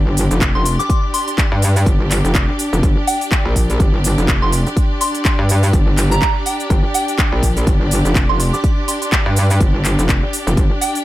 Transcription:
Already playing: string section D4 G4 D5
0.07 wobble bass G1
0.17 open hi-hat, cabasa
0.31 wobble bass F1, closed hi-hat, cabasa
0.41 kick, clap, closed hi-hat, cabasa
0.55 wobble bass F1, synth bell C6
0.65 synth bell C6, open hi-hat, cabasa
0.79 synth bell D6, cabasa
0.90 kick, closed hi-hat, cabasa
1.14 synth bell C6, open hi-hat, cabasa
1.27 synth bell C6, closed hi-hat, cabasa
1.38 kick, clap, closed hi-hat, cabasa
1.52 wobble bass G2
1.62 open hi-hat, cabasa
1.76 open hi-hat, cabasa
1.86 wobble bass G1, kick, closed hi-hat, cabasa
2.00 wobble bass G1
2.11 clap, open hi-hat, cabasa
2.24 wobble bass F1, closed hi-hat, cabasa
2.35 kick, clap, closed hi-hat, cabasa
2.59 open hi-hat, cabasa
2.73 wobble bass F1, cabasa
2.83 wobble bass G1, kick, closed hi-hat, cabasa
3.07 synth bell G5, open hi-hat, cabasa
3.21 closed hi-hat, cabasa
3.32 kick, clap, closed hi-hat, cabasa
3.45 wobble bass A#1
3.56 kick, open hi-hat, cabasa
3.70 closed hi-hat, cabasa
3.80 wobble bass G1, kick, closed hi-hat, cabasa
3.94 wobble bass G1
4.04 open hi-hat, cabasa
4.18 wobble bass F1, closed hi-hat, cabasa
4.28 kick, clap, closed hi-hat, cabasa
4.42 wobble bass F1, synth bell C6
4.52 synth bell C6, open hi-hat, cabasa
4.67 cabasa
4.77 kick, closed hi-hat, cabasa
5.01 synth bell C6, open hi-hat, cabasa
5.15 closed hi-hat, cabasa
5.25 kick, clap, closed hi-hat, cabasa
5.39 wobble bass G2
5.49 open hi-hat, cabasa
5.63 open hi-hat, cabasa
5.73 wobble bass G1, kick, closed hi-hat, cabasa
5.97 clap, open hi-hat, cabasa
6.11 synth bell A#5, closed hi-hat, cabasa
6.22 synth bell A#5, kick, clap, closed hi-hat, cabasa
6.46 synth bell G5, open hi-hat, cabasa
6.60 closed hi-hat, cabasa
6.70 wobble bass G1, kick, closed hi-hat, cabasa
6.94 synth bell G5, open hi-hat, cabasa
7.08 closed hi-hat, cabasa
7.19 kick, clap, closed hi-hat, cabasa
7.32 wobble bass A#1
7.43 kick, open hi-hat, cabasa
7.57 closed hi-hat, cabasa
7.67 wobble bass G1, kick, closed hi-hat, cabasa
7.81 wobble bass G1
7.91 open hi-hat, cabasa
8.05 wobble bass F1, closed hi-hat, cabasa
8.15 kick, clap, closed hi-hat, cabasa
8.29 wobble bass F1, synth bell C6
8.40 synth bell C6, open hi-hat, cabasa
8.53 synth bell D6, cabasa
8.64 kick, closed hi-hat, cabasa
8.88 synth bell C6, open hi-hat, cabasa
9.02 synth bell C6, closed hi-hat, cabasa
9.12 kick, clap, closed hi-hat, cabasa
9.26 wobble bass G2
9.36 open hi-hat, cabasa
9.50 open hi-hat, cabasa
9.61 wobble bass G1, kick, closed hi-hat, cabasa
9.74 wobble bass G1
9.85 clap, open hi-hat, cabasa
9.99 wobble bass F1, closed hi-hat, cabasa
10.09 kick, clap, closed hi-hat, cabasa
10.33 open hi-hat, cabasa
10.47 wobble bass F1, cabasa
10.57 wobble bass G1, kick, closed hi-hat, cabasa
10.81 synth bell G5, open hi-hat, cabasa
10.95 closed hi-hat, cabasa

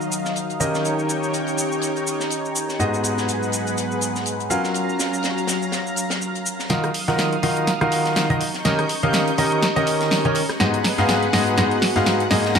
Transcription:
Already playing: grand piano D#3 D#4 F4 F#4 A#4 F5, analog synth pad F#3 D#5 F5, ambient pad F#3 D#4 F5 A#5
0.01 cabasa
0.11 closed hi-hat, cabasa
0.25 snare, cabasa
0.36 closed hi-hat, cabasa
0.50 closed hi-hat, cabasa
0.60 grand piano D#3 C#4 D#4 G4 A#4 D#5, ambient pad C#4, analog synth pad D#4 C#5 G5, closed hi-hat, cabasa
0.74 ambient pad G4, snare, cabasa
0.85 closed hi-hat, cabasa
0.99 cabasa
1.09 closed hi-hat, cabasa
1.23 cabasa
1.34 closed hi-hat, cabasa
1.41 ambient pad D#5
1.46 closed hi-hat, cabasa
1.58 closed hi-hat, cabasa
1.72 cabasa
1.81 closed hi-hat, cabasa
1.96 closed hi-hat, cabasa
2.07 closed hi-hat, cabasa
2.20 snare, cabasa
2.30 closed hi-hat, cabasa
2.45 cabasa
2.55 closed hi-hat, cabasa
2.69 snare, cabasa
2.80 grand piano G#2 B3 D#4 F#4 G#4 D#5, ambient pad B3, analog synth pad G#4 B4 F#5, closed hi-hat, cabasa
2.94 ambient pad F#3, closed hi-hat, cabasa
3.03 closed hi-hat, cabasa
3.18 snare, cabasa
3.28 closed hi-hat, cabasa
3.43 cabasa
3.52 closed hi-hat, cabasa
3.57 ambient pad G#5
3.67 closed hi-hat, cabasa
3.78 closed hi-hat, cabasa
3.92 cabasa
4.01 closed hi-hat, cabasa
4.15 snare, cabasa
4.26 closed hi-hat, cabasa
4.40 closed hi-hat, cabasa
4.50 grand piano F#3 C#4 F4 F#4 A#4 F5, analog synth pad F#3 F5 A#5, ambient pad C#4, closed hi-hat, cabasa
4.64 snare, cabasa
4.74 closed hi-hat, cabasa
4.89 cabasa
4.99 snare, closed hi-hat, cabasa
5.14 cabasa
5.23 snare, closed hi-hat, cabasa
5.28 ambient pad A#5
5.38 closed hi-hat, cabasa
5.47 snare, closed hi-hat, cabasa
5.62 cabasa
5.72 snare, closed hi-hat, cabasa
5.87 cabasa
5.96 closed hi-hat, cabasa
6.10 snare, closed hi-hat, cabasa
6.22 cabasa
6.35 closed hi-hat, cabasa
6.46 closed hi-hat, cabasa
6.59 snare, cabasa
6.69 grand piano D#3 D#4 F4 F#4 A#4 F5, ambient pad D#4, analog synth pad F5 D#6, snare, closed hi-hat
6.83 cross-stick, closed hi-hat
6.94 closed hi-hat, open hi-hat
7.08 fm bass C#2, grand piano D#3 D#4 F4 F#4 A#4 F#5, snare, closed hi-hat
7.18 snare, closed hi-hat
7.33 closed hi-hat
7.43 grand piano D#3 D#4 F4 F#4 A#4 F5, closed hi-hat, open hi-hat
7.56 closed hi-hat
7.67 snare, closed hi-hat
7.81 grand piano D#3 D#4 F4 F#4 A#4 F5, cross-stick, closed hi-hat
7.92 closed hi-hat, open hi-hat
8.05 fm bass D#1, snare, closed hi-hat
8.16 snare, closed hi-hat
8.30 grand piano D#3 D#4 F4 F#4 A#4 D#5, closed hi-hat
8.41 ambient pad C#4, analog synth pad D#5 C#6 G6, closed hi-hat, open hi-hat
8.54 fm bass D#1, snare, closed hi-hat
8.61 grand piano D#3 C#4 D#4 G4 A#4 D#5, ambient pad D#5, closed hi-hat
8.65 snare, closed hi-hat
8.79 cross-stick, closed hi-hat
8.89 ambient pad G4, closed hi-hat, open hi-hat
9.03 fm bass C#2, grand piano D#3 C#4 D#4 G4 A#4 F5, closed hi-hat
9.13 snare, closed hi-hat
9.28 closed hi-hat
9.38 grand piano D#3 C#4 D#4 G4 A#4 D#5, closed hi-hat, open hi-hat
9.52 closed hi-hat
9.63 snare, closed hi-hat
9.76 grand piano D#3 C#4 D#4 G4 A#4 D#5, closed hi-hat
9.87 closed hi-hat, open hi-hat
10.01 fm bass D#1, snare, closed hi-hat
10.11 snare, closed hi-hat, open hi-hat
10.25 grand piano D#3 C#4 D#4 G4 A#4 C#5, closed hi-hat
10.35 closed hi-hat, open hi-hat
10.49 fm bass D#1, cross-stick, snare, closed hi-hat
10.60 grand piano G#2 B3 D#4 F#4 G#4 D#5, ambient pad B3, analog synth pad G#4 B4 F#5, snare, closed hi-hat
10.74 closed hi-hat
10.84 snare, closed hi-hat, open hi-hat
10.98 grand piano G#2 B3 D#4 F#4 G#4 F5, ambient pad F#4, snare, closed hi-hat
11.09 snare, closed hi-hat
11.23 closed hi-hat
11.33 grand piano G#2 B3 D#4 F#4 G#4 D#5, snare, closed hi-hat, open hi-hat
11.37 ambient pad G#5
11.47 closed hi-hat
11.57 grand piano G#2 B3 D#4 F#4 G#4 D#5, snare, closed hi-hat
11.71 closed hi-hat
11.82 snare, closed hi-hat, open hi-hat
11.96 grand piano G#2 B3 D#4 F#4 G#4 F5, snare, closed hi-hat
12.06 snare, closed hi-hat
12.20 closed hi-hat
12.31 grand piano G#2 A#3 D#4 F#4 G#4 D#5, ambient pad C#4, analog synth pad F6 A#6, snare, closed hi-hat, open hi-hat
12.45 snare, closed hi-hat
12.55 grand piano G#2 A#3 D#4 F#4 G#4 D#5, snare, closed hi-hat

